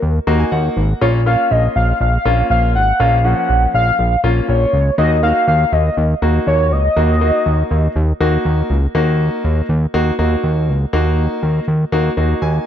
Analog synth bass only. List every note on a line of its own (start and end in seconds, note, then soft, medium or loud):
0.02 0.20 D#2 loud
0.27 0.44 D#2 loud
0.52 0.69 D#2 loud
0.77 0.94 G#1 medium
1.02 1.36 A#1 loud
1.51 1.68 A#1 loud
1.76 1.93 A#1 loud
2.01 2.18 A#1 loud
2.25 2.43 A#1 loud
2.50 2.77 A#1 loud
2.75 2.92 G#1 medium
3.00 3.35 A#1 loud
3.49 3.67 A#1 medium
3.74 3.92 A#1 loud
3.99 4.16 A#1 loud
4.24 4.41 A#1 loud
4.49 4.66 A#1 loud
4.73 4.91 C#2 loud
4.98 5.33 D#2 loud
5.48 5.65 D#2 loud
5.73 5.90 D#2 loud
5.97 6.15 D#2 loud
6.22 6.40 D#2 loud
6.47 6.73 D#2 loud
6.72 6.89 C#2 loud
6.97 7.31 D#2 loud
7.46 7.63 D#2 loud
7.71 7.88 D#2 loud
7.96 8.13 D#2 loud
8.20 8.38 D#2 loud
8.45 8.63 D#2 loud
8.70 8.87 C#2 medium
8.95 9.30 D#2 loud
9.44 9.62 D#2 loud
9.69 9.87 D#2 loud
9.94 10.11 D#2 loud
10.19 10.36 D#2 loud
10.44 10.70 D#2 medium
10.68 10.86 C#2 loud
10.93 11.28 D#2 loud
11.43 11.60 D#2 medium
11.68 11.85 D#2 loud
11.92 12.10 D#2 loud
12.17 12.34 D#2 loud
12.42 12.59 D#2 loud